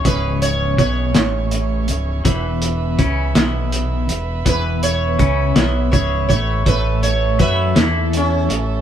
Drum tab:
HH |xxxxxx|xxxxxx|xxxxxx|xxxxxx|
SD |---o--|---o--|---o--|---o--|
BD |o-o---|o-o---|o-o-oo|o-o---|